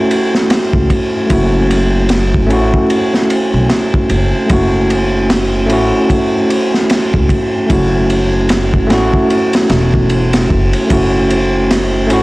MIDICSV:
0, 0, Header, 1, 4, 480
1, 0, Start_track
1, 0, Key_signature, 3, "minor"
1, 0, Tempo, 800000
1, 781, Time_signature, 4, 2, 24, 8
1, 7337, End_track
2, 0, Start_track
2, 0, Title_t, "Tine electric piano"
2, 0, Program_c, 0, 4
2, 0, Control_c, 0, 64, 127
2, 0, Note_on_c, 0, 57, 88
2, 0, Note_on_c, 0, 61, 80
2, 0, Note_on_c, 0, 64, 75
2, 0, Note_on_c, 0, 66, 94
2, 746, Note_off_c, 0, 57, 0
2, 752, Note_off_c, 0, 61, 0
2, 758, Note_off_c, 0, 64, 0
2, 759, Note_on_c, 0, 57, 69
2, 765, Note_off_c, 0, 66, 0
2, 772, Note_on_c, 0, 61, 62
2, 786, Note_on_c, 0, 64, 64
2, 797, Note_on_c, 0, 66, 77
2, 1466, Note_off_c, 0, 57, 0
2, 1473, Note_off_c, 0, 61, 0
2, 1479, Note_on_c, 0, 57, 85
2, 1480, Note_off_c, 0, 64, 0
2, 1485, Note_off_c, 0, 66, 0
2, 1493, Note_on_c, 0, 61, 78
2, 1506, Note_on_c, 0, 64, 76
2, 1519, Note_on_c, 0, 66, 94
2, 2666, Note_off_c, 0, 57, 0
2, 2673, Note_off_c, 0, 61, 0
2, 2678, Note_on_c, 0, 57, 69
2, 2680, Note_off_c, 0, 64, 0
2, 2687, Note_off_c, 0, 66, 0
2, 2690, Note_on_c, 0, 61, 65
2, 2703, Note_on_c, 0, 64, 64
2, 2717, Note_on_c, 0, 66, 77
2, 3386, Note_off_c, 0, 57, 0
2, 3392, Note_off_c, 0, 61, 0
2, 3398, Note_off_c, 0, 64, 0
2, 3398, Note_on_c, 0, 57, 86
2, 3405, Note_off_c, 0, 66, 0
2, 3410, Note_on_c, 0, 61, 81
2, 3424, Note_on_c, 0, 64, 84
2, 3437, Note_on_c, 0, 66, 94
2, 4586, Note_off_c, 0, 57, 0
2, 4592, Note_off_c, 0, 61, 0
2, 4599, Note_off_c, 0, 64, 0
2, 4600, Note_on_c, 0, 57, 68
2, 4605, Note_off_c, 0, 66, 0
2, 4611, Note_on_c, 0, 61, 65
2, 4624, Note_on_c, 0, 64, 63
2, 4635, Note_on_c, 0, 66, 78
2, 5307, Note_off_c, 0, 57, 0
2, 5312, Note_off_c, 0, 61, 0
2, 5319, Note_off_c, 0, 64, 0
2, 5321, Note_on_c, 0, 57, 90
2, 5325, Note_off_c, 0, 66, 0
2, 5333, Note_on_c, 0, 61, 82
2, 5346, Note_on_c, 0, 64, 83
2, 5359, Note_on_c, 0, 66, 98
2, 6507, Note_off_c, 0, 57, 0
2, 6513, Note_off_c, 0, 61, 0
2, 6520, Note_off_c, 0, 64, 0
2, 6521, Note_on_c, 0, 57, 68
2, 6526, Note_off_c, 0, 66, 0
2, 6534, Note_on_c, 0, 61, 68
2, 6545, Note_on_c, 0, 64, 65
2, 6558, Note_on_c, 0, 66, 78
2, 7227, Note_off_c, 0, 57, 0
2, 7234, Note_off_c, 0, 61, 0
2, 7239, Note_off_c, 0, 64, 0
2, 7241, Note_on_c, 0, 57, 88
2, 7246, Note_off_c, 0, 66, 0
2, 7253, Note_on_c, 0, 61, 81
2, 7266, Note_on_c, 0, 64, 80
2, 7279, Note_on_c, 0, 66, 100
2, 7337, Note_off_c, 0, 57, 0
2, 7337, Note_off_c, 0, 61, 0
2, 7337, Note_off_c, 0, 64, 0
2, 7337, Note_off_c, 0, 66, 0
2, 7337, End_track
3, 0, Start_track
3, 0, Title_t, "Upright bass"
3, 0, Program_c, 1, 32
3, 442, Note_on_c, 1, 37, 65
3, 528, Note_off_c, 1, 37, 0
3, 782, Note_on_c, 1, 30, 89
3, 1501, Note_off_c, 1, 30, 0
3, 1501, Note_on_c, 1, 33, 95
3, 1626, Note_off_c, 1, 33, 0
3, 2122, Note_on_c, 1, 35, 83
3, 2208, Note_off_c, 1, 35, 0
3, 2458, Note_on_c, 1, 30, 74
3, 2585, Note_off_c, 1, 30, 0
3, 2701, Note_on_c, 1, 30, 92
3, 3420, Note_off_c, 1, 30, 0
3, 3420, Note_on_c, 1, 33, 98
3, 3546, Note_off_c, 1, 33, 0
3, 4284, Note_on_c, 1, 37, 72
3, 4369, Note_off_c, 1, 37, 0
3, 4621, Note_on_c, 1, 30, 82
3, 5340, Note_off_c, 1, 30, 0
3, 5340, Note_on_c, 1, 33, 100
3, 5466, Note_off_c, 1, 33, 0
3, 5820, Note_on_c, 1, 28, 95
3, 6282, Note_off_c, 1, 28, 0
3, 6303, Note_on_c, 1, 30, 83
3, 6427, Note_off_c, 1, 30, 0
3, 6544, Note_on_c, 1, 30, 87
3, 7261, Note_off_c, 1, 30, 0
3, 7261, Note_on_c, 1, 33, 93
3, 7337, Note_off_c, 1, 33, 0
3, 7337, End_track
4, 0, Start_track
4, 0, Title_t, "Drums"
4, 65, Note_on_c, 9, 51, 60
4, 125, Note_off_c, 9, 51, 0
4, 208, Note_on_c, 9, 38, 50
4, 268, Note_off_c, 9, 38, 0
4, 301, Note_on_c, 9, 51, 74
4, 305, Note_on_c, 9, 38, 114
4, 361, Note_off_c, 9, 51, 0
4, 365, Note_off_c, 9, 38, 0
4, 440, Note_on_c, 9, 36, 85
4, 500, Note_off_c, 9, 36, 0
4, 541, Note_on_c, 9, 36, 91
4, 541, Note_on_c, 9, 51, 65
4, 601, Note_off_c, 9, 36, 0
4, 601, Note_off_c, 9, 51, 0
4, 779, Note_on_c, 9, 51, 86
4, 781, Note_on_c, 9, 36, 94
4, 839, Note_off_c, 9, 51, 0
4, 841, Note_off_c, 9, 36, 0
4, 1023, Note_on_c, 9, 51, 62
4, 1083, Note_off_c, 9, 51, 0
4, 1254, Note_on_c, 9, 51, 76
4, 1260, Note_on_c, 9, 38, 100
4, 1314, Note_off_c, 9, 51, 0
4, 1320, Note_off_c, 9, 38, 0
4, 1407, Note_on_c, 9, 36, 83
4, 1467, Note_off_c, 9, 36, 0
4, 1502, Note_on_c, 9, 51, 58
4, 1562, Note_off_c, 9, 51, 0
4, 1643, Note_on_c, 9, 36, 81
4, 1703, Note_off_c, 9, 36, 0
4, 1740, Note_on_c, 9, 51, 72
4, 1800, Note_off_c, 9, 51, 0
4, 1885, Note_on_c, 9, 38, 50
4, 1945, Note_off_c, 9, 38, 0
4, 1980, Note_on_c, 9, 51, 64
4, 2040, Note_off_c, 9, 51, 0
4, 2218, Note_on_c, 9, 38, 103
4, 2219, Note_on_c, 9, 51, 71
4, 2278, Note_off_c, 9, 38, 0
4, 2279, Note_off_c, 9, 51, 0
4, 2364, Note_on_c, 9, 36, 97
4, 2424, Note_off_c, 9, 36, 0
4, 2457, Note_on_c, 9, 51, 65
4, 2517, Note_off_c, 9, 51, 0
4, 2698, Note_on_c, 9, 51, 85
4, 2700, Note_on_c, 9, 36, 114
4, 2758, Note_off_c, 9, 51, 0
4, 2760, Note_off_c, 9, 36, 0
4, 2941, Note_on_c, 9, 51, 66
4, 3001, Note_off_c, 9, 51, 0
4, 3179, Note_on_c, 9, 51, 83
4, 3180, Note_on_c, 9, 38, 120
4, 3239, Note_off_c, 9, 51, 0
4, 3240, Note_off_c, 9, 38, 0
4, 3418, Note_on_c, 9, 51, 67
4, 3478, Note_off_c, 9, 51, 0
4, 3660, Note_on_c, 9, 36, 94
4, 3660, Note_on_c, 9, 51, 72
4, 3720, Note_off_c, 9, 36, 0
4, 3720, Note_off_c, 9, 51, 0
4, 3902, Note_on_c, 9, 51, 63
4, 3962, Note_off_c, 9, 51, 0
4, 4046, Note_on_c, 9, 38, 46
4, 4106, Note_off_c, 9, 38, 0
4, 4138, Note_on_c, 9, 51, 82
4, 4145, Note_on_c, 9, 38, 102
4, 4198, Note_off_c, 9, 51, 0
4, 4205, Note_off_c, 9, 38, 0
4, 4283, Note_on_c, 9, 36, 85
4, 4343, Note_off_c, 9, 36, 0
4, 4376, Note_on_c, 9, 36, 91
4, 4379, Note_on_c, 9, 51, 60
4, 4436, Note_off_c, 9, 36, 0
4, 4439, Note_off_c, 9, 51, 0
4, 4619, Note_on_c, 9, 51, 85
4, 4620, Note_on_c, 9, 36, 110
4, 4679, Note_off_c, 9, 51, 0
4, 4680, Note_off_c, 9, 36, 0
4, 4859, Note_on_c, 9, 51, 66
4, 4919, Note_off_c, 9, 51, 0
4, 5094, Note_on_c, 9, 51, 77
4, 5102, Note_on_c, 9, 38, 114
4, 5154, Note_off_c, 9, 51, 0
4, 5162, Note_off_c, 9, 38, 0
4, 5242, Note_on_c, 9, 36, 76
4, 5302, Note_off_c, 9, 36, 0
4, 5340, Note_on_c, 9, 51, 77
4, 5342, Note_on_c, 9, 38, 97
4, 5400, Note_off_c, 9, 51, 0
4, 5402, Note_off_c, 9, 38, 0
4, 5481, Note_on_c, 9, 36, 82
4, 5541, Note_off_c, 9, 36, 0
4, 5582, Note_on_c, 9, 51, 54
4, 5642, Note_off_c, 9, 51, 0
4, 5720, Note_on_c, 9, 51, 67
4, 5729, Note_on_c, 9, 38, 98
4, 5780, Note_off_c, 9, 51, 0
4, 5789, Note_off_c, 9, 38, 0
4, 5817, Note_on_c, 9, 51, 68
4, 5823, Note_on_c, 9, 38, 87
4, 5877, Note_off_c, 9, 51, 0
4, 5883, Note_off_c, 9, 38, 0
4, 5963, Note_on_c, 9, 36, 76
4, 6023, Note_off_c, 9, 36, 0
4, 6057, Note_on_c, 9, 51, 60
4, 6117, Note_off_c, 9, 51, 0
4, 6199, Note_on_c, 9, 51, 80
4, 6203, Note_on_c, 9, 38, 92
4, 6259, Note_off_c, 9, 51, 0
4, 6263, Note_off_c, 9, 38, 0
4, 6302, Note_on_c, 9, 36, 75
4, 6362, Note_off_c, 9, 36, 0
4, 6439, Note_on_c, 9, 51, 61
4, 6499, Note_off_c, 9, 51, 0
4, 6541, Note_on_c, 9, 51, 95
4, 6542, Note_on_c, 9, 36, 107
4, 6601, Note_off_c, 9, 51, 0
4, 6602, Note_off_c, 9, 36, 0
4, 6783, Note_on_c, 9, 51, 65
4, 6843, Note_off_c, 9, 51, 0
4, 7024, Note_on_c, 9, 51, 90
4, 7025, Note_on_c, 9, 38, 107
4, 7084, Note_off_c, 9, 51, 0
4, 7085, Note_off_c, 9, 38, 0
4, 7259, Note_on_c, 9, 51, 69
4, 7319, Note_off_c, 9, 51, 0
4, 7337, End_track
0, 0, End_of_file